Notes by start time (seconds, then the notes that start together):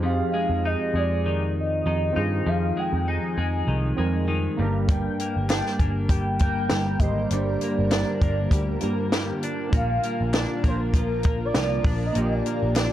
Already playing: F2 C4 D#4 G4 G#4
0.03 F2 F5
0.34 G#3
0.50 F2
0.66 D#4 D#5
0.94 F2 G#3 D5
1.26 D#3
1.59 D#5
1.86 F2 D#3
2.13 G2 C4 D#4 F4
2.18 G#4
2.47 F2 F5
2.77 G#3 G5
2.93 F2
3.08 D#4 G#5
3.38 F2 G#3
3.68 C2 D#3
3.97 F2 G3 G#3 C4 D#4 A#4
4.28 D#3
4.57 G1 G2 G3 A#3 D4
4.62 A#4
4.88 G2 D3 G3 A#3 A#4 G5, kick, closed hi-hat
5.19 A#3, closed hi-hat
5.37 G1
5.49 D4 G5, snare, clap, closed hi-hat
5.66 snare
5.78 G1 A#3 G#5, kick, closed hi-hat
6.09 G3 G5, kick, closed hi-hat
6.39 A#3 G5, kick, closed hi-hat
6.70 G1 G3, snare, clap, closed hi-hat
6.99 G#1 D3 A#3 G4 D#5, kick, closed hi-hat
7.04 C5
7.29 G1 F4 D5, closed hi-hat
7.33 G2
7.61 A#3, closed hi-hat
7.79 G1
7.91 D4, snare, clap, closed hi-hat
8.21 G1 A#3, kick, closed hi-hat
8.51 D2 G3, kick, closed hi-hat
8.80 G2 A#3 D4 G4 A#4, closed hi-hat
9.12 G3, snare, clap, closed hi-hat
9.43 D4, closed hi-hat
9.69 A#1 F3 A#3 D4 F4 A#4, kick, closed hi-hat
9.73 A#2 A#4 F5
10.03 A#3, closed hi-hat
10.21 A#1
10.33 D4 D5, snare, clap, closed hi-hat
10.64 A#1 A#3 C5, kick, closed hi-hat
10.94 F3 A#4, kick, closed hi-hat
11.23 A#3, kick, closed hi-hat
11.45 D5
11.54 C2 F3, snare, clap, closed hi-hat
11.84 A#1 D4, kick, open hi-hat
12.06 D#5
12.13 A#1 A#2 A#3 D4 F4 C5, closed hi-hat
12.18 G4 D5
12.24 D#5
12.34 D5
12.46 A#3, closed hi-hat
12.63 A#1
12.76 D4, snare, clap, closed hi-hat